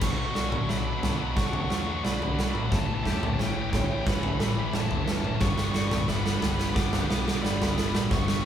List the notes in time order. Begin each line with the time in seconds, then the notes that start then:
0.01 B1 B2 F#3 B3 A4 D5 C#6, kick, snare, floor tom, crash
0.09 B2 F#3 C#6
0.17 B2 F#3 C#6
0.24 B2 F#3 C#6
0.32 B1 B2 F#3 F#4 D5 C#6, snare
0.40 B2 F#3 C#6
0.47 B2 F#3 C#6
0.52 B2 F#3, floor tom, mid tom
0.56 C#6
0.64 B2 F#3 C#6
0.68 B1 B2 F#3 D4 E5 B5, snare
0.78 B2 F#3 B5
0.85 B2 F#3 B5
0.94 B2 F#3 B5
1.00 B1 B2 F#3 B5, snare, floor tom
1.07 B2 F#3 B5
1.16 B2 F#3 B5
1.23 B2 F#3 B5
1.32 B2 F#3 F#5 B5
1.37 B1 B2 D4 C#6, kick, snare
1.41 F#3
1.47 B2 F#3 C#6
1.53 B2 F#3 C#6, floor tom
1.61 B2 F#3 C#6
1.68 E2 A3 C#6, snare
1.72 B2 F#3
1.76 B2 F#3 C#6
1.85 B2 F#3 C#6
1.92 B2 F#3 C#6
1.99 B2 F#3 D5 C#6
2.04 B1 F#3 B5, snare
2.09 B2 F#3 B5
2.17 B2 F#3 B5
2.22 B2, floor tom
2.26 F#3 B5
2.34 B2 F#3 B5
2.38 B1 B2 F#3 D4, snare
2.44 B5
2.48 B2 F#3 B5
2.55 B2 F#3 B5, mid tom
2.64 B2 F#3 B5
2.70 A1 A2 E3 A3 G4 C#5 E5 A5, kick, snare, floor tom
2.79 A2 E3 A5
2.86 A2 E3 A5
2.94 A2 E3 A5
3.02 E2 A2 E3 G4 E5 A5, kick, snare
3.09 A2 E3 A5
3.18 A2 E3 A5
3.23 A2 E3, floor tom, mid tom
3.27 A5
3.33 A2 E3 A5
3.39 A1 A2 E3 C#4 G5, snare
3.47 A2 E3 G5
3.54 A2 E3 G5
3.62 A2 E3 G5
3.70 A1 A2 E3 C#5 G5, kick, snare, floor tom
3.77 A2 E3 G5
3.86 A2 E3 G5
3.93 A2 E3 G5
4.01 A2 E3 B4 G5
4.06 A1 C#4 B5, kick, snare
4.11 A2 E3 B5
4.18 A2 E3 B5
4.23 A2 E3, floor tom
4.29 A2 B5
4.34 E3 B5
4.39 A2 E3 G3 A4, snare, mid tom
4.44 B5
4.49 A2 E3
4.53 B5
4.57 A2 E3 B5
4.65 A2 E3 B5
4.71 F#1 A2 E3 A5, snare, mid tom
4.79 A2 E3 A5
4.88 A2 E3 A5, floor tom
4.95 A2 E3 A5
5.03 A2 E3 A5
5.07 A2 E3 C#4 B4, snare
5.12 A5
5.18 A2 E3 A5
5.24 A2 E3 A5, mid tom
5.34 A2 E3 A5
5.41 G1 G3 B3 F#4 B4 C#6, kick, snare, floor tom
5.49 G3 B3 C#6
5.56 G3 B3 C#6, snare
5.64 G3 B3 C#6
5.71 G1 G3 B3 F#4 D5 C#6, snare
5.79 G3 B3 C#6
5.87 G3 B3 C#6
5.91 G3 C#6, snare, floor tom, mid tom
5.96 B3
6.02 G3 B3 C#6
6.08 G1 G3 B3 D4 E5 B5, snare
6.17 G3 B3 B5
6.24 G3 B3 B5, snare
6.32 G3 B3 B5
6.40 G1 G3 B3 B5, snare, floor tom
6.47 G3 B3 B5
6.55 G3 B3 B5, snare
6.64 G3 B3 B5
6.70 G3 B3 B5
6.75 G1 G3 D4 F#5 D6, kick, snare
6.80 B3 D6
6.87 G3 B3 D6
6.93 G3 B3, snare, floor tom
6.98 D6
7.02 G3 B3
7.06 B1 B3 D6, snare
7.11 G3 B3 D6
7.18 G3 B3
7.22 G3 D6
7.27 B3 D6, snare
7.33 G3 B3
7.37 G3 D6
7.41 G1 G3 B3 D5 B5, snare
7.48 G3 B3 B5
7.56 G3 B3 B5
7.62 G3 B3, snare, floor tom
7.66 B5
7.71 G3 B3 B5
7.77 G1 G3 B3 D4 B5, snare
7.86 G3 B3 B5
7.94 G3 B3 B5, snare, mid tom
8.02 G3 B3 B5
8.10 G1 G2 G3 B3 D4 E4 E5 C#6, kick, snare, floor tom
8.18 G3 B3 C#6
8.27 G3 B3 C#6, snare
8.33 G3 B3 C#6
8.41 G3